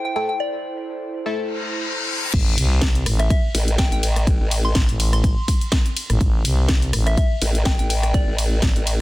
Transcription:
0.00 1.85 E4 medium
0.00 1.85 A4 medium
0.00 1.88 C5 medium
0.05 0.12 G5 medium
0.16 0.30 A3 medium
0.16 0.30 E4 medium
0.16 0.30 A4 loud
0.16 0.24 G5 medium
0.29 0.36 G5 medium
0.40 0.77 D5 medium
1.26 1.85 A3 medium
1.26 1.85 E4 medium
1.26 1.85 A4 loud
1.37 reverse cymbal medium
2.34 2.56 A1 loud
2.34 kick loud
2.34 closed hi-hat medium
2.34 crash loud
2.34 ride medium
2.34 sub drop medium
2.58 3.04 C2 loud
2.58 open hi-hat loud
2.58 ride medium
2.81 kick loud
2.81 snare loud
2.81 closed hi-hat medium
2.95 closed hi-hat medium
3.06 3.29 A1 medium
3.06 cross-stick medium
3.06 open hi-hat loud
3.06 ride medium
3.19 3.26 E5 medium
3.19 cross-stick medium
3.19 closed hi-hat medium
3.30 3.39 E5 medium
3.30 kick loud
3.30 closed hi-hat medium
3.30 ride medium
3.54 3.90 A1 loud
3.54 open hi-hat loud
3.54 ride medium
3.68 closed hi-hat medium
3.78 3.87 G5 medium
3.78 kick loud
3.78 snare loud
3.78 closed hi-hat medium
3.78 ride medium
3.92 4.38 A1 loud
3.92 3.99 G5 medium
3.92 closed hi-hat medium
4.03 open hi-hat loud
4.03 ride medium
4.16 cross-stick medium
4.16 closed hi-hat medium
4.27 kick loud
4.27 closed hi-hat medium
4.27 ride medium
4.40 4.74 A1 loud
4.51 open hi-hat loud
4.51 ride medium
4.65 4.72 C6 medium
4.75 4.87 A1 loud
4.75 4.84 C6 medium
4.75 kick loud
4.75 snare loud
4.75 closed hi-hat medium
4.75 ride medium
4.89 5.35 A1 medium
4.89 closed hi-hat medium
5.00 open hi-hat loud
5.00 ride medium
5.13 5.61 C6 medium
5.13 cross-stick medium
5.13 closed hi-hat medium
5.24 kick loud
5.24 closed hi-hat medium
5.24 ride medium
5.48 kick medium
5.48 open hi-hat loud
5.48 ride medium
5.61 closed hi-hat medium
5.72 kick loud
5.72 snare loud
5.72 closed hi-hat medium
5.72 ride medium
5.86 closed hi-hat medium
5.97 open hi-hat loud
5.97 ride medium
6.10 6.19 A1 loud
6.10 cross-stick medium
6.10 closed hi-hat medium
6.21 6.43 A1 loud
6.21 kick loud
6.21 closed hi-hat medium
6.21 ride medium
6.45 6.92 C2 medium
6.45 open hi-hat loud
6.45 ride medium
6.69 kick loud
6.69 snare loud
6.69 closed hi-hat medium
6.69 ride medium
6.82 closed hi-hat medium
6.93 7.16 A1 medium
6.93 cross-stick medium
6.93 open hi-hat loud
6.93 ride medium
7.06 7.13 E5 medium
7.06 cross-stick medium
7.06 closed hi-hat medium
7.17 7.26 E5 medium
7.17 kick loud
7.17 closed hi-hat medium
7.17 ride medium
7.42 7.77 A1 loud
7.42 open hi-hat loud
7.42 ride medium
7.55 closed hi-hat medium
7.65 7.74 G5 medium
7.65 kick loud
7.65 snare loud
7.65 closed hi-hat medium
7.65 ride medium
7.79 8.25 A1 loud
7.79 7.86 G5 medium
7.79 closed hi-hat medium
7.90 7.98 G5 medium
7.90 open hi-hat loud
7.90 ride medium
8.03 8.10 G5 medium
8.03 cross-stick medium
8.03 closed hi-hat medium
8.14 8.52 D5 medium
8.14 kick loud
8.14 closed hi-hat medium
8.14 ride medium
8.28 8.61 A1 loud
8.38 open hi-hat loud
8.38 ride medium
8.62 8.74 A1 medium
8.62 kick loud
8.62 snare loud
8.62 closed hi-hat medium
8.62 ride medium
8.76 9.01 A1 loud
8.76 closed hi-hat medium
8.87 open hi-hat loud
8.87 ride medium

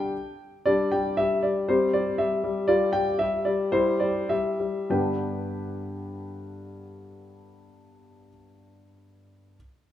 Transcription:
0.00 0.14 G3 medium
0.00 0.14 D4 soft
0.00 0.14 G4 soft
0.00 0.39 G5 medium
0.66 0.91 G3 medium
0.66 1.65 D4 soft
0.66 1.65 G4 soft
0.66 0.92 D5 medium
0.92 1.16 G3 soft
0.92 1.18 G5 medium
1.17 1.42 G3 soft
1.17 1.43 E5 medium
1.43 1.68 G3 soft
1.43 1.68 D5 soft
1.68 1.93 G3 soft
1.68 2.65 C4 soft
1.68 2.65 G4 soft
1.68 1.94 C5 medium
1.93 2.18 G3 soft
1.93 2.19 D5 medium
2.18 2.42 G3 soft
2.18 2.69 E5 medium
2.44 2.67 G3 soft
2.68 2.92 G3 medium
2.68 3.69 F4 soft
2.68 3.69 G4 soft
2.68 2.94 D5 medium
2.93 3.18 G3 soft
2.93 3.19 G5 medium
3.19 3.44 G3 soft
3.19 3.46 E5 medium
3.45 3.71 G3 soft
3.45 3.73 D5 medium
3.72 3.99 G3 medium
3.72 4.87 E4 soft
3.72 4.87 G4 soft
3.72 4.01 C5 medium
4.00 4.29 G3 soft
4.00 4.30 D5 medium
4.29 4.58 G3 soft
4.29 4.91 E5 medium
4.60 4.90 G3 soft
4.90 8.27 G2 soft
4.90 8.27 D3 soft
4.90 8.27 B3 soft
4.90 8.28 D4 soft
4.90 8.28 G4 soft
4.90 8.28 B4 soft
4.90 8.28 G5 soft

